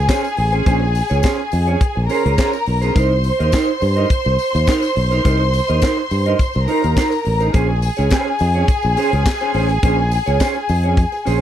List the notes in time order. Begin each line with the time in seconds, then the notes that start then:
Already playing: G#4 G#5
0.08 C#4 G#4 C5, kick, snare, clap, closed hi-hat, tambourine
0.24 muted clean electric guitar stroke, tambourine
0.37 A1, muted clean electric guitar stroke, open hi-hat
0.52 C#4 G#4 C5, closed hi-hat
0.66 A#1 C#4 G#4 C5, kick, closed hi-hat, tambourine
0.82 muted clean electric guitar stroke
0.94 muted clean electric guitar stroke, open hi-hat, tambourine
1.09 C#2 C#4 G#4 C#5, closed hi-hat, tambourine
1.23 C#4 G#4 C5, kick, snare, clap, closed hi-hat, tambourine
1.38 muted clean electric guitar stroke
1.52 F2, muted clean electric guitar stroke, open hi-hat, tambourine
1.67 C#4 G#4 C#5, closed hi-hat
1.80 muted clean electric guitar stroke, kick, closed hi-hat, tambourine
1.95 A#1, muted clean electric guitar stroke
2.09 C#4 G#4 A#4 C5 A#5, open hi-hat, tambourine
2.25 C#2 C#4 G#4 C5, closed hi-hat
2.37 C#4 G#4 C5, kick, snare, clap, closed hi-hat, tambourine
2.53 muted clean electric guitar stroke, tambourine
2.66 B1, muted clean electric guitar stroke, open hi-hat
2.81 C#4 G#4 C5, closed hi-hat, tambourine
2.95 C2 D#4 A#4 C5 C6, kick, closed hi-hat, tambourine
3.11 muted clean electric guitar stroke
3.24 muted clean electric guitar stroke, open hi-hat, tambourine
3.39 D#2 D#4 A#4 D#5, closed hi-hat
3.52 D#4 A#4 C5, kick, snare, clap, closed hi-hat, tambourine
3.68 muted clean electric guitar stroke
3.81 G2, muted clean electric guitar stroke, open hi-hat, tambourine
3.96 D#4 A#4 D#5, closed hi-hat
4.10 muted clean electric guitar stroke, kick, closed hi-hat, tambourine
4.24 C2, muted clean electric guitar stroke, tambourine
4.39 open hi-hat, tambourine
4.53 D#2, muted clean electric guitar stroke, closed hi-hat, tambourine
4.67 D#4 A#4 C5, kick, snare, clap, closed hi-hat, tambourine
4.82 muted clean electric guitar stroke, tambourine
4.96 B1, muted clean electric guitar stroke, open hi-hat
5.11 D#4 A#4 C5, closed hi-hat, tambourine
5.24 C2 D#4 A#4 C5, kick, closed hi-hat, tambourine
5.40 muted clean electric guitar stroke
5.53 muted clean electric guitar stroke, open hi-hat, tambourine
5.67 D#2 D#4 A#4 D#5, closed hi-hat, tambourine
5.82 D#4 A#4 C5, kick, snare, clap, closed hi-hat, tambourine
5.97 muted clean electric guitar stroke
6.11 G2, muted clean electric guitar stroke, open hi-hat, tambourine
6.26 D#4 A#4 D#5, closed hi-hat
6.39 muted clean electric guitar stroke, kick, closed hi-hat, tambourine
6.54 C2, muted clean electric guitar stroke, tambourine
6.68 D#4 A#4 C5 A#5, open hi-hat, tambourine
6.83 D#2 D#4 A#4 C5, closed hi-hat, tambourine
6.96 D#4 A#4 C5, kick, snare, clap, closed hi-hat, tambourine
7.11 muted clean electric guitar stroke, tambourine
7.24 A1, muted clean electric guitar stroke, open hi-hat
7.40 D#4 A#4 C5, closed hi-hat, tambourine
7.53 A#1 C#4 G#4 C5 G#5, kick, closed hi-hat, tambourine
7.69 muted clean electric guitar stroke
7.82 muted clean electric guitar stroke, open hi-hat, tambourine
7.96 C#2 C#4 G#4 C#5, closed hi-hat, tambourine
8.10 C#4 G#4 C5, kick, snare, clap, closed hi-hat, tambourine
8.26 muted clean electric guitar stroke
8.39 F2, muted clean electric guitar stroke, open hi-hat, tambourine
8.54 C#4 G#4 C#5, closed hi-hat
8.68 muted clean electric guitar stroke, kick, closed hi-hat, tambourine
8.82 A#1, muted clean electric guitar stroke, tambourine
8.97 C#4 G#4 C5, open hi-hat, tambourine
9.12 C#2 C#4 G#4 C5, closed hi-hat
9.25 muted clean electric guitar stroke, kick, snare, clap, closed hi-hat, tambourine
9.41 C#4 G#4 C5, tambourine
9.54 A1 C#4 G#4 C5, open hi-hat
9.69 muted clean electric guitar stroke, closed hi-hat, tambourine
9.83 A#1 C#4 G#4 C5, kick, closed hi-hat, tambourine
9.98 muted clean electric guitar stroke
10.11 muted clean electric guitar stroke, open hi-hat, tambourine
10.26 C#2 C#4 G#4 C#5, closed hi-hat, tambourine
10.40 C#4 G#4 C5, kick, snare, clap, closed hi-hat, tambourine
10.55 muted clean electric guitar stroke
10.69 F2, muted clean electric guitar stroke, open hi-hat, tambourine
10.83 C#4 G#4 C#5, closed hi-hat
10.97 muted clean electric guitar stroke, kick, closed hi-hat, tambourine
11.12 muted clean electric guitar stroke, tambourine
11.25 A#1 C#4 G#4 C5, open hi-hat, tambourine